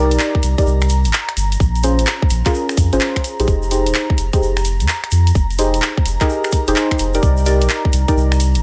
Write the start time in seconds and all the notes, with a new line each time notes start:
Already playing: C2 D#4 G4 A#4 D5 A#5
0.11 A#1, closed hi-hat, shaker
0.19 clap, shaker
0.35 kick
0.43 C2, open hi-hat, shaker
0.58 D#4 G4 A#4 D5, kick, closed hi-hat, shaker
0.66 C2, shaker
0.81 finger snap, shaker
0.89 open hi-hat, shaker
1.05 G1, closed hi-hat, shaker
1.13 clap, shaker
1.29 finger snap, closed hi-hat
1.37 G1, open hi-hat, shaker
1.52 closed hi-hat, shaker
1.60 A#1, kick, shaker
1.75 closed hi-hat, shaker
1.83 C#4 F4 G#4 C5, open hi-hat, shaker
1.99 G#1, closed hi-hat, shaker
2.06 clap, shaker
2.22 kick
2.30 A#1, open hi-hat, shaker
2.46 C#4 F4 G#4 A#4, kick, clap, closed hi-hat, shaker
2.54 shaker
2.69 finger snap, shaker
2.77 F2, kick, open hi-hat, shaker
2.93 G#1 C#4 F4 G#4 C5, closed hi-hat, shaker
3.01 clap, shaker
3.16 finger snap, kick, closed hi-hat
3.24 open hi-hat, shaker
3.40 A#1 D#4 G4 G#4 C5, closed hi-hat, shaker
3.47 F1 A#5, kick, shaker
3.63 shaker
3.71 D#4 G4 G#4 C5, open hi-hat, shaker
3.86 D#1, closed hi-hat, shaker
3.95 clap, shaker
4.10 kick
4.18 F1, open hi-hat, shaker
4.33 D#4 G4 G#4 C5, kick, closed hi-hat, shaker
4.41 F1, shaker
4.57 finger snap, shaker
4.65 open hi-hat, shaker
4.80 F2, closed hi-hat, shaker
4.88 clap, shaker
5.04 finger snap, closed hi-hat
5.11 F2, open hi-hat, shaker
5.27 closed hi-hat, shaker
5.35 F1, kick, shaker
5.51 closed hi-hat, shaker
5.59 D#4 G4 G#4 C5, open hi-hat, shaker
5.74 D#1, closed hi-hat, shaker
5.82 clap, shaker
5.97 kick
6.06 F1, open hi-hat, shaker
6.21 D#4 G4 G#4 A#4, kick, clap, closed hi-hat, shaker
6.29 shaker
6.44 finger snap, shaker
6.52 kick, open hi-hat, shaker
6.67 F1 D#4 G4 G#4 C5, closed hi-hat, shaker
6.76 clap, shaker
6.91 finger snap, kick, closed hi-hat
6.99 F1, open hi-hat, shaker
7.14 D#4 G4 A#4 D5, closed hi-hat, shaker
7.23 C2, kick, shaker
7.37 shaker
7.46 D#4 G4 A#4 D5, open hi-hat, shaker
7.61 A#1, closed hi-hat, shaker
7.69 clap, shaker
7.85 kick
7.93 C2, open hi-hat, shaker
8.08 D#4 G4 A#4 D5, kick, closed hi-hat, shaker
8.16 C2, shaker
8.32 finger snap, shaker
8.40 open hi-hat, shaker
8.55 G1, closed hi-hat, shaker